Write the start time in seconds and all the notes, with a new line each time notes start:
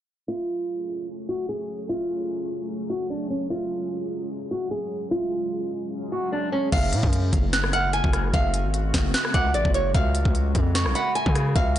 0.28 F#3 A3 C#4 F4 G#4
1.29 F#4
1.49 G#4
1.89 F4
2.90 F#4
3.10 D4
3.30 C#4
3.50 G#3 F4
4.51 F#4
4.71 G#4
5.11 F4
6.12 F#4
6.32 D4
6.52 C#4
6.72 F#1 C#3 G#3 A3 F#4 F5, kick, closed hi-hat, crash
6.93 A2, closed hi-hat
7.03 F#2, kick
7.13 closed hi-hat
7.33 F#1, kick, closed hi-hat
7.53 F#6, snare, closed hi-hat
7.64 cross-stick
7.73 F#5 F6, closed hi-hat
7.93 G#5, closed hi-hat
8.04 F#1, kick
8.13 cross-stick, closed hi-hat
8.34 F#1 F5, kick, closed hi-hat
8.54 closed hi-hat
8.64 G#1
8.74 closed hi-hat
8.94 F#1, kick, snare, closed hi-hat
9.14 F#6, snare, closed hi-hat
9.25 cross-stick
9.34 C#2 F#5 D6, kick, closed hi-hat
9.54 A1 D5, closed hi-hat
9.65 F#1, kick
9.74 C#5, closed hi-hat
9.95 C#2 C#3 F#4 F5, kick, closed hi-hat
10.15 closed hi-hat
10.25 C#2, kick
10.35 closed hi-hat
10.55 F2, kick, closed hi-hat
10.75 C#6, snare, closed hi-hat
10.86 B1, cross-stick
10.95 F#5 B5, closed hi-hat
11.15 G#5, closed hi-hat
11.26 C#3, kick
11.35 cross-stick, closed hi-hat
11.56 C#2 F5, kick, closed hi-hat
11.76 closed hi-hat